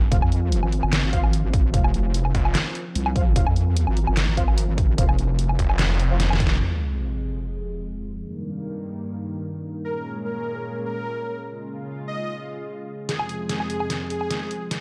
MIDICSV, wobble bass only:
0, 0, Header, 1, 2, 480
1, 0, Start_track
1, 0, Key_signature, -4, "minor"
1, 0, Tempo, 405405
1, 139, Time_signature, 4, 2, 24, 8
1, 17530, End_track
2, 0, Start_track
2, 0, Title_t, "Wobble bass"
2, 0, Program_c, 0, 39
2, 138, Note_on_c, 0, 29, 96
2, 243, Note_off_c, 0, 29, 0
2, 263, Note_on_c, 0, 41, 101
2, 723, Note_off_c, 0, 41, 0
2, 743, Note_on_c, 0, 32, 105
2, 963, Note_off_c, 0, 32, 0
2, 983, Note_on_c, 0, 31, 106
2, 1203, Note_off_c, 0, 31, 0
2, 1222, Note_on_c, 0, 32, 96
2, 1683, Note_off_c, 0, 32, 0
2, 1703, Note_on_c, 0, 32, 101
2, 2039, Note_off_c, 0, 32, 0
2, 2058, Note_on_c, 0, 29, 99
2, 2163, Note_off_c, 0, 29, 0
2, 2183, Note_on_c, 0, 29, 97
2, 2280, Note_off_c, 0, 29, 0
2, 2298, Note_on_c, 0, 29, 96
2, 2759, Note_off_c, 0, 29, 0
2, 3497, Note_on_c, 0, 36, 96
2, 3959, Note_off_c, 0, 36, 0
2, 3977, Note_on_c, 0, 29, 93
2, 4083, Note_off_c, 0, 29, 0
2, 4103, Note_on_c, 0, 41, 99
2, 4563, Note_off_c, 0, 41, 0
2, 4583, Note_on_c, 0, 32, 99
2, 4803, Note_off_c, 0, 32, 0
2, 4824, Note_on_c, 0, 31, 103
2, 5043, Note_off_c, 0, 31, 0
2, 5063, Note_on_c, 0, 32, 97
2, 5523, Note_off_c, 0, 32, 0
2, 5543, Note_on_c, 0, 32, 101
2, 5880, Note_off_c, 0, 32, 0
2, 5898, Note_on_c, 0, 29, 97
2, 6003, Note_off_c, 0, 29, 0
2, 6024, Note_on_c, 0, 29, 102
2, 6120, Note_off_c, 0, 29, 0
2, 6138, Note_on_c, 0, 29, 97
2, 6600, Note_off_c, 0, 29, 0
2, 17530, End_track
0, 0, End_of_file